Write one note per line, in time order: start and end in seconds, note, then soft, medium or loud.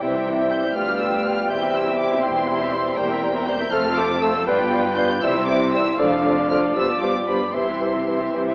0.01 0.66 C2 medium
0.01 0.67 C3 medium
0.01 0.13 E3 soft
0.01 2.94 G3 soft
0.01 0.71 C4 soft
0.01 0.71 E4 soft
0.01 0.13 E4 soft
0.01 0.14 E4 soft
0.01 0.13 C5 soft
0.01 0.77 C5 soft
0.01 0.74 E5 medium
0.01 0.71 E5 soft
0.01 0.50 G5 medium
0.14 0.26 G3 soft
0.14 0.26 C4 soft
0.14 0.26 G4 soft
0.14 0.27 E5 soft
0.26 0.39 E3 soft
0.26 0.38 E4 soft
0.26 0.39 E4 soft
0.26 0.39 C5 soft
0.39 0.51 G3 soft
0.39 0.51 C4 soft
0.39 0.51 G4 soft
0.39 0.51 E5 soft
0.50 0.62 E3 soft
0.50 0.62 E4 soft
0.50 0.62 C5 soft
0.50 0.75 G6 medium
0.63 0.75 G3 soft
0.63 0.75 C4 soft
0.63 0.75 G4 soft
0.63 0.75 E5 soft
0.75 1.41 D2 medium
0.75 0.87 F3 soft
0.75 1.48 B3 soft
0.75 0.87 F4 soft
0.75 2.97 G4 soft
0.75 0.87 G4 soft
0.75 0.87 B4 soft
0.75 1.50 B4 soft
0.75 1.48 F5 medium
0.75 2.66 G5 medium
0.75 1.00 F6 medium
0.88 1.00 G3 soft
0.88 1.00 F4 soft
0.88 1.00 G4 soft
0.88 1.00 D5 soft
1.00 1.13 F3 soft
1.00 1.12 F4 soft
1.00 1.13 G4 soft
1.00 1.12 B4 soft
1.00 1.25 E6 medium
1.11 1.25 G3 soft
1.11 1.25 F4 soft
1.11 1.24 G4 soft
1.11 1.24 D5 soft
1.24 1.37 F3 soft
1.24 1.36 F4 soft
1.24 1.37 G4 soft
1.24 1.36 B4 soft
1.24 1.49 F6 medium
1.37 1.50 G3 soft
1.37 1.50 F4 soft
1.37 1.49 G4 soft
1.37 1.50 D5 soft
1.49 2.14 E1 medium
1.49 2.15 E2 medium
1.49 2.97 C4 medium
1.49 1.61 E4 soft
1.49 1.61 G4 soft
1.49 1.61 C5 medium
1.49 2.95 C5 medium
1.49 2.25 E5 medium
1.49 1.74 G6 medium
1.61 1.75 C4 soft
1.61 1.73 E4 soft
1.61 1.74 G4 soft
1.61 1.74 E5 soft
1.74 1.86 E4 soft
1.74 1.87 G4 soft
1.74 1.86 C5 soft
1.74 1.99 E6 medium
1.86 1.99 C4 soft
1.86 1.98 E4 soft
1.86 1.99 G4 soft
1.86 1.99 E5 soft
1.99 2.10 E4 soft
1.99 2.10 G4 soft
1.99 2.10 C5 medium
1.99 2.23 D6 medium
2.12 2.24 C4 soft
2.12 2.23 E4 soft
2.12 2.24 G4 soft
2.12 2.24 E5 soft
2.23 2.88 E1 medium
2.23 2.88 E2 medium
2.23 2.36 E4 soft
2.23 2.35 E4 medium
2.23 2.36 G4 medium
2.23 2.36 C5 soft
2.23 2.49 G5 medium
2.23 2.95 C6 medium
2.36 2.48 C4 medium
2.36 2.47 E4 soft
2.36 2.48 G4 soft
2.36 2.48 E5 medium
2.48 2.59 E4 medium
2.48 2.60 E4 medium
2.48 2.59 G4 medium
2.48 2.59 C5 medium
2.48 2.74 E5 medium
2.60 2.73 C4 soft
2.60 2.72 E4 soft
2.60 2.72 G4 soft
2.60 2.72 E5 medium
2.72 2.85 E4 soft
2.72 2.84 E4 medium
2.72 2.85 G4 soft
2.72 2.85 C5 soft
2.72 3.45 C5 medium
2.84 2.97 C4 soft
2.84 2.97 E4 soft
2.84 2.97 G4 soft
2.84 2.97 E5 soft
2.96 3.63 E1 medium
2.96 3.63 E2 medium
2.96 3.09 G3 medium
2.96 3.09 A#3 medium
2.96 4.44 C4 medium
2.96 3.09 G4 medium
2.96 3.68 A#4 medium
2.96 3.09 C5 medium
2.96 3.47 G5 medium
2.96 3.03 A#5 medium
3.10 3.22 C4 soft
3.10 3.22 E4 medium
3.10 3.22 A#4 soft
3.10 3.22 E5 soft
3.22 3.34 G3 medium
3.22 3.35 A#3 medium
3.22 3.35 G4 medium
3.22 3.34 C5 medium
3.22 3.28 A#5 medium
3.34 3.47 C4 soft
3.34 3.47 E4 soft
3.34 3.47 A#4 medium
3.34 3.47 E5 medium
3.46 3.59 G3 soft
3.46 3.59 A#3 soft
3.46 3.59 G4 medium
3.46 3.59 C5 medium
3.46 3.53 A#5 medium
3.46 3.72 G6 medium
3.60 3.72 C4 medium
3.60 3.72 E4 medium
3.60 3.72 A#4 medium
3.60 3.72 E5 medium
3.71 4.38 F1 medium
3.71 4.38 F2 medium
3.71 3.84 A3 medium
3.71 3.83 F4 medium
3.71 4.47 A4 medium
3.71 4.43 A4 medium
3.71 3.84 A4 medium
3.71 3.83 C5 medium
3.71 3.84 C5 medium
3.71 3.78 A5 medium
3.71 3.97 F6 loud
3.84 3.97 C4 medium
3.84 3.97 F4 medium
3.84 3.97 A4 medium
3.84 3.97 F5 medium
3.96 4.09 A3 medium
3.96 4.10 F4 medium
3.96 4.09 A4 medium
3.96 4.09 C5 medium
3.96 4.03 A5 medium
3.96 4.22 D6 loud
4.09 4.22 C4 medium
4.09 4.22 F4 medium
4.09 4.22 A4 medium
4.09 4.22 F5 medium
4.22 4.34 A3 medium
4.22 4.34 F4 medium
4.22 4.34 A4 medium
4.22 4.34 C5 medium
4.22 4.28 A5 medium
4.22 4.47 E6 medium
4.35 4.47 C4 medium
4.35 4.46 F4 medium
4.35 4.47 A4 soft
4.35 4.47 F5 soft
4.47 5.14 G1 medium
4.47 5.14 G2 medium
4.47 4.59 F3 medium
4.47 4.59 G3 medium
4.47 5.21 B3 medium
4.47 5.21 F4 medium
4.47 4.59 F4 medium
4.47 5.21 B4 medium
4.47 4.59 B4 medium
4.47 4.53 F5 medium
4.47 4.96 G5 medium
4.59 4.72 G3 medium
4.59 4.72 D4 medium
4.59 4.72 G4 medium
4.59 4.72 D5 medium
4.71 4.85 F3 medium
4.71 4.84 G3 medium
4.71 4.84 F4 medium
4.71 4.84 B4 medium
4.71 4.77 F5 medium
4.84 4.97 G3 medium
4.84 4.97 D4 soft
4.84 4.97 G4 medium
4.84 4.97 D5 medium
4.96 5.09 F3 medium
4.96 5.09 G3 medium
4.96 5.09 F4 medium
4.96 5.09 B4 medium
4.96 5.03 F5 medium
4.96 5.22 G6 medium
5.09 5.22 G3 medium
5.09 5.22 D4 medium
5.09 5.22 G4 medium
5.09 5.23 D5 medium
5.22 5.90 C2 medium
5.22 5.90 C3 medium
5.22 5.34 E3 medium
5.22 5.99 G3 medium
5.22 5.34 G3 medium
5.22 5.34 E4 medium
5.22 5.99 E4 medium
5.22 5.34 E4 medium
5.22 5.34 C5 medium
5.22 6.01 C5 medium
5.22 5.35 C5 medium
5.22 5.29 E5 medium
5.22 5.48 E6 medium
5.35 5.48 G3 medium
5.35 5.48 C4 medium
5.35 5.48 G4 medium
5.35 5.48 E5 medium
5.47 5.61 E3 medium
5.47 5.60 G3 medium
5.47 5.61 E4 medium
5.47 5.61 C5 medium
5.47 5.60 C5 medium
5.47 5.55 E5 medium
5.47 5.73 D6 medium
5.60 5.73 G3 medium
5.60 5.73 C4 medium
5.60 5.73 G4 medium
5.60 5.73 E5 medium
5.72 5.85 E3 soft
5.72 5.85 G3 medium
5.72 5.85 E4 medium
5.72 5.85 E4 soft
5.72 5.85 C5 medium
5.72 5.86 C5 medium
5.72 5.80 E5 medium
5.72 5.98 E6 medium
5.86 5.99 G3 medium
5.86 5.99 C4 soft
5.86 5.99 G4 soft
5.86 5.99 E5 soft
5.98 6.66 F1 medium
5.98 6.67 F2 medium
5.98 6.10 D3 medium
5.98 6.11 F3 medium
5.98 6.75 A3 medium
5.98 6.10 D4 medium
5.98 6.74 D4 medium
5.98 6.10 F4 medium
5.98 6.11 A4 medium
5.98 6.10 D5 medium
5.98 6.05 D5 medium
5.98 7.55 D5 medium
5.98 6.49 F5 medium
6.10 6.24 F3 soft
6.10 6.24 F4 medium
6.10 6.24 A4 medium
6.10 6.24 F5 medium
6.23 6.37 D3 soft
6.23 6.36 F3 medium
6.23 6.37 D4 medium
6.23 6.37 F4 medium
6.23 6.36 A4 medium
6.23 6.37 D5 soft
6.23 6.31 D5 medium
6.36 6.50 F3 soft
6.36 6.50 F4 medium
6.36 6.50 A4 medium
6.36 6.50 F5 medium
6.49 6.62 D3 soft
6.49 6.62 F3 medium
6.49 6.62 D4 soft
6.49 6.62 F4 medium
6.49 6.63 A4 medium
6.49 6.62 D5 medium
6.49 6.56 D5 medium
6.49 6.57 F6 medium
6.62 6.76 F3 soft
6.62 6.76 F4 soft
6.62 6.76 A4 soft
6.62 6.76 F5 soft
6.75 7.45 G1 medium
6.75 7.45 G2 medium
6.75 6.88 F3 medium
6.75 6.88 G3 medium
6.75 7.37 B3 medium
6.75 6.88 D4 soft
6.75 7.37 F4 medium
6.75 6.88 F4 medium
6.75 6.87 G4 soft
6.75 6.88 B4 soft
6.75 6.83 B4 medium
6.75 7.01 E6 medium
6.88 7.01 F3 medium
6.88 7.01 B3 soft
6.88 7.02 G4 soft
6.88 7.02 D5 soft
7.01 7.14 F3 soft
7.01 7.15 G3 soft
7.01 7.15 D4 soft
7.01 7.15 F4 medium
7.01 7.14 G4 soft
7.01 7.15 B4 soft
7.01 7.08 B4 medium
7.01 7.27 D6 medium
7.14 7.28 F3 soft
7.14 7.28 B3 soft
7.14 7.28 G4 soft
7.14 7.28 D5 soft
7.27 7.40 F3 soft
7.27 7.40 G3 soft
7.27 7.40 D4 soft
7.27 7.40 F4 soft
7.27 7.40 G4 soft
7.27 7.40 B4 soft
7.27 7.35 B4 soft
7.27 7.54 B5 medium
7.41 7.54 F3 soft
7.41 7.54 B3 soft
7.41 7.55 G4 soft
7.41 7.55 D5 soft
7.54 8.25 C2 medium
7.54 8.25 C3 medium
7.54 7.66 E3 soft
7.54 7.67 G3 soft
7.54 8.55 C4 soft
7.54 8.55 E4 soft
7.54 7.67 E4 soft
7.54 7.67 G4 soft
7.54 7.60 C5 soft
7.54 7.67 C5 soft
7.54 8.55 E5 medium
7.54 8.32 C6 medium
7.68 7.81 E3 soft
7.68 7.81 C4 soft
7.68 7.81 G4 soft
7.68 7.81 E5 soft
7.81 7.93 E3 soft
7.81 7.95 G3 soft
7.81 7.95 E4 soft
7.81 7.93 G4 soft
7.81 7.88 C5 soft
7.81 7.95 C5 soft
7.95 8.08 E3 soft
7.95 8.08 C4 soft
7.95 8.08 G4 soft
7.95 8.08 E5 soft
8.07 8.20 E3 soft
8.07 8.20 G3 soft
8.07 8.20 E4 soft
8.07 8.21 G4 soft
8.07 8.20 C5 soft
8.07 8.15 C5 soft
8.20 8.34 E3 soft
8.20 8.34 C4 soft
8.20 8.35 G4 soft
8.20 8.35 E5 soft
8.34 8.55 C2 medium
8.34 8.55 C3 medium
8.34 8.46 E3 soft
8.34 8.48 G3 soft
8.34 8.48 E4 soft
8.34 8.47 G4 soft
8.34 8.40 C5 soft
8.34 8.48 C5 soft
8.34 8.41 E5 medium
8.47 8.55 E3 soft
8.47 8.55 C4 soft
8.47 8.55 G4 soft
8.47 8.55 E5 soft